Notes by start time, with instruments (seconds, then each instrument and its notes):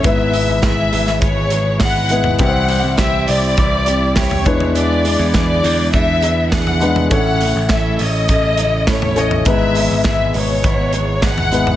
Already playing: string section E4
0.03 picked electric bass G#1, grand piano G#2 G#3 B3 E4 B4, string section B2 E3 G#3, steel-string acoustic guitar G#3 B3 E4 G#4, violin section E5, kick, hi-hat pedal, open hi-hat
0.34 steel-string acoustic guitar B3 E4 G#4, hi-hat pedal, open hi-hat
0.49 picked electric bass G#1
0.62 steel-string acoustic guitar G#3 B3 E4 G#4, violin section E5, kick, snare, hi-hat pedal, open hi-hat
0.92 picked electric bass G#1, steel-string acoustic guitar B3 E4 G#4, hi-hat pedal, open hi-hat
1.07 snare
1.21 picked electric bass G#1, steel-string acoustic guitar G#3 B3 E4 G#4, violin section C#5, kick, hi-hat pedal, open hi-hat
1.50 steel-string acoustic guitar B3 E4 G#4, hi-hat pedal, open hi-hat
1.80 steel-string acoustic guitar G#3 B3 E4 G#4, violin section F#5, kick, snare, hi-hat pedal, open hi-hat
2.09 grand piano G#3 B3 E4 B4, steel-string acoustic guitar B3 E4 G#4, hi-hat pedal, open hi-hat
2.24 floor tom
2.39 picked electric bass C2, steel-string acoustic guitar C3 E3 C4 E4 G4, grand piano C3 G3 C4 E4 B4, string section C3 G3, violin section F#5, kick, hi-hat pedal, open hi-hat
2.48 grand piano C5
2.68 steel-string acoustic guitar C4 E4 G4, hi-hat pedal, open hi-hat
2.84 picked electric bass C2
2.97 steel-string acoustic guitar C3 E3 C4 E4 G4, violin section E5, kick, snare, hi-hat pedal, open hi-hat
3.28 picked electric bass C2, steel-string acoustic guitar C4 E4 G4, violin section D5, hi-hat pedal, open hi-hat
3.57 picked electric bass C2, steel-string acoustic guitar E3 C4 E4 G4, kick, hi-hat pedal, open hi-hat
3.86 steel-string acoustic guitar C4 E4 G4, hi-hat pedal, open hi-hat
4.15 steel-string acoustic guitar C3 E3 C4 E4 G4, violin section C#5, kick, snare, hi-hat pedal, open hi-hat
4.31 floor tom
4.45 picked electric bass E2, string section D3 G#3 B3, grand piano E3 G#3 D4 E4 B4, steel-string acoustic guitar B3 D4 G#4, kick, hi-hat pedal, open hi-hat
4.60 floor tom
4.75 steel-string acoustic guitar E3 B3 D4 G#4, violin section D5, hi-hat pedal, open hi-hat
5.04 steel-string acoustic guitar B3 D4 G#4, hi-hat pedal, open hi-hat
5.20 picked electric bass E2
5.33 steel-string acoustic guitar E3 B3 D4 G#4, violin section D5, kick, snare, hi-hat pedal, open hi-hat
5.63 picked electric bass E2, steel-string acoustic guitar B3 D4 G#4, hi-hat pedal, open hi-hat
5.92 picked electric bass E2, steel-string acoustic guitar E3 B3 D4 G#4, violin section E5, kick, hi-hat pedal, open hi-hat
6.22 steel-string acoustic guitar B3 D4 G#4, hi-hat pedal, open hi-hat
6.52 steel-string acoustic guitar E3 B3 D4 G#4, violin section F#5, kick, snare, hi-hat pedal, open hi-hat
6.67 floor tom
6.80 grand piano G#3 D4 E4 B4, steel-string acoustic guitar B3 D4 G#4, hi-hat pedal, open hi-hat
6.96 floor tom
7.10 picked electric bass A1, grand piano A2 A3 C#4 E4 C#5, steel-string acoustic guitar A2 E3 A3 C#4 E4 A4, string section C#3 E3 A3, violin section F#5, kick, hi-hat pedal, open hi-hat
7.40 steel-string acoustic guitar A3 C#4 E4 A4, hi-hat pedal, open hi-hat
7.56 picked electric bass A1
7.69 steel-string acoustic guitar A2 E3 A3 C#4 E4 A4, violin section E5, kick, snare, hi-hat pedal, open hi-hat
7.99 picked electric bass A1, steel-string acoustic guitar A3 C#4 E4 A4, violin section D#5, hi-hat pedal, open hi-hat
8.28 picked electric bass A1, steel-string acoustic guitar A3 C#4 E4 A4, kick, hi-hat pedal, open hi-hat
8.57 steel-string acoustic guitar A3 C#4 E4 A4, hi-hat pedal, open hi-hat
8.87 steel-string acoustic guitar A2 E3 A3 C#4 E4 A4, violin section C#5, kick, snare, hi-hat pedal, open hi-hat
9.02 floor tom
9.16 grand piano A3 C#4 E4 C#5, steel-string acoustic guitar A3 C#4 E4 A4, violin section D#5, hi-hat pedal, open hi-hat
9.31 floor tom
9.45 picked electric bass G#1, grand piano G#2 G#3 B3 E4 B4, string section B2 G#3, steel-string acoustic guitar G#3 B3 E4 G#4, violin section E5, kick, hi-hat pedal, open hi-hat
9.75 steel-string acoustic guitar B3 E4 G#4, hi-hat pedal, open hi-hat
9.91 picked electric bass G#1
10.04 steel-string acoustic guitar G#3 B3 E4 G#4, violin section E5, kick, snare, hi-hat pedal, open hi-hat
10.33 picked electric bass G#1, steel-string acoustic guitar B3 E4 G#4, violin section C#5, hi-hat pedal, open hi-hat
10.63 picked electric bass G#1, steel-string acoustic guitar G#3 B3 E4 G#4, kick, hi-hat pedal, open hi-hat
10.93 steel-string acoustic guitar B3 E4 G#4, hi-hat pedal, open hi-hat
11.22 steel-string acoustic guitar G#3 B3 E4 G#4, violin section F#5, kick, snare, hi-hat pedal, open hi-hat
11.38 floor tom
11.51 grand piano G#3 B3 E4 B4, steel-string acoustic guitar B3 E4 G#4, hi-hat pedal, open hi-hat
11.67 floor tom